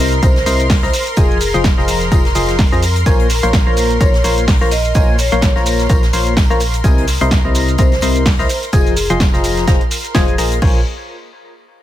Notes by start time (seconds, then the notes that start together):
Already playing: C2 C3 E4 A#4 C5 D#5 A#5 C6
0.12 closed hi-hat, shaker
0.22 C2 C3 E4 A#4 C5 D#5 A#5, kick, closed hi-hat, tambourine, shaker
0.36 snare, closed hi-hat
0.46 C2 C3 E4 A#4 C5 D#5 C6, open hi-hat, tambourine, shaker
0.60 closed hi-hat, shaker
0.70 kick, snare, closed hi-hat, open hi-hat, shaker
0.83 C2 E4 A#4 C5 D#5 A#5, snare, shaker
0.93 open hi-hat, tambourine, shaker
1.07 closed hi-hat, shaker
1.17 F1 F3 F4 G#4 C5 D#5 G#5, kick, closed hi-hat, tambourine, shaker
1.31 shaker
1.41 open hi-hat, tambourine, shaker
1.54 F1 F3 F4 G#4 C5 D#5 C6, closed hi-hat, shaker
1.64 kick, snare, closed hi-hat, tambourine, shaker
1.78 F1 F3 F4 G#4 C5 D#5 A#5, snare
1.88 open hi-hat, tambourine, shaker
2.01 snare, closed hi-hat, shaker
2.12 F1 F3 F4 G#4 C5 D#5 A#5, kick, closed hi-hat, tambourine, shaker
2.25 snare, closed hi-hat
2.35 F1 F3 F4 G#4 C5 D#5 C6, open hi-hat, tambourine, shaker
2.49 snare, closed hi-hat, shaker
2.59 kick, snare, open hi-hat, tambourine, shaker
2.72 F2 F3 F4 G#4 C5 D#5 A#5, shaker
2.82 open hi-hat, tambourine, shaker
2.96 closed hi-hat, shaker
3.06 A#1 A#3 F4 A#4 C5 C#5 G#5, kick, closed hi-hat, tambourine, shaker
3.19 closed hi-hat
3.30 snare, open hi-hat, tambourine, shaker
3.43 A#1 A#3 F4 A#4 C5 C#5 C6, closed hi-hat, shaker
3.53 kick, snare, closed hi-hat, tambourine, shaker
3.67 A#1 A#3 F4 A#4 C5 C#5 A#5
3.76 open hi-hat, tambourine, shaker
3.90 closed hi-hat, shaker
4.00 A#1 A#3 F4 A#4 C5 C#5 A#5, kick, closed hi-hat, tambourine, shaker
4.14 snare, closed hi-hat
4.24 A#1 A#3 F4 A#4 C5 C#5 C6, open hi-hat, tambourine, shaker
4.38 closed hi-hat, shaker
4.48 kick, snare, closed hi-hat, open hi-hat, shaker
4.61 A#1 A#3 F4 A#4 C5 C#5 A#5, snare, shaker
4.71 D#5, open hi-hat, tambourine, shaker
4.85 closed hi-hat, shaker
4.95 A#1 A#3 F4 A#4 C5 C#5 G#5, kick, closed hi-hat, tambourine, shaker
5.18 C#5, open hi-hat, tambourine, shaker
5.32 A#1 A#3 F4 A#4 C5 C#5 C6, closed hi-hat, shaker
5.41 kick, snare, closed hi-hat, tambourine, shaker
5.56 A#1 A#3 F4 A#4 C5 C#5 A#5, snare
5.66 open hi-hat, tambourine, shaker
5.79 snare, closed hi-hat, shaker
5.89 A#1 A#3 F4 A#4 C5 C#5 A#5, kick, closed hi-hat, tambourine, shaker
6.03 snare, closed hi-hat
6.13 A#1 A#3 F4 A#4 C5 C#5 C6, open hi-hat, tambourine, shaker
6.27 closed hi-hat, shaker
6.37 kick, snare, open hi-hat, tambourine, shaker
6.50 A#1 A#3 F4 A#4 C5 C#5 A#5, shaker
6.60 open hi-hat, tambourine, shaker
6.74 closed hi-hat, shaker
6.84 C2 C3 E4 A#4 C5 D#5 G#5, kick, closed hi-hat, tambourine, shaker
6.98 closed hi-hat
7.07 snare, open hi-hat, tambourine, shaker
7.21 C2 C3 E4 A#4 C5 D#5 C6, closed hi-hat, shaker
7.31 kick, snare, closed hi-hat, tambourine, shaker
7.45 C2 C3 E4 A#4 C5 D#5 A#5
7.55 open hi-hat, tambourine, shaker
7.68 closed hi-hat, shaker
7.78 C2 C3 E4 A#4 C5 D#5 A#5, kick, closed hi-hat, tambourine, shaker
7.92 snare, closed hi-hat
8.01 C2 C3 E4 A#4 C5 D#5 C6, open hi-hat, tambourine, shaker
8.16 closed hi-hat, shaker
8.25 kick, snare, closed hi-hat, open hi-hat, shaker
8.39 C2 E4 A#4 C5 D#5 A#5, snare, shaker
8.49 open hi-hat, tambourine, shaker
8.63 closed hi-hat, shaker
8.73 F1 F3 F4 G#4 C5 D#5 G#5, kick, closed hi-hat, tambourine, shaker
8.87 closed hi-hat, shaker
8.96 open hi-hat, tambourine, shaker
9.10 F1 F3 F4 G#4 C5 D#5 C6, closed hi-hat, shaker
9.20 kick, snare, closed hi-hat, tambourine, shaker
9.33 F1 F3 F4 G#4 C5 D#5 A#5, snare, shaker
9.44 open hi-hat, tambourine, shaker
9.57 snare, closed hi-hat, shaker
9.67 F1 F3 F4 G#4 C5 D#5 A#5, kick, snare, closed hi-hat, tambourine, shaker
9.81 closed hi-hat
9.91 open hi-hat, tambourine, shaker
10.05 closed hi-hat, shaker
10.15 F1 F3 F4 G#4 C5 D#5 G#5, kick, snare, open hi-hat, tambourine, shaker
10.28 closed hi-hat, shaker
10.38 A#1 A#3 F4 G#4 C5 D#5 A#5, open hi-hat, tambourine, shaker
10.52 closed hi-hat, shaker
10.62 A#1 F4 A#4 C5 C#5 G#5, kick, crash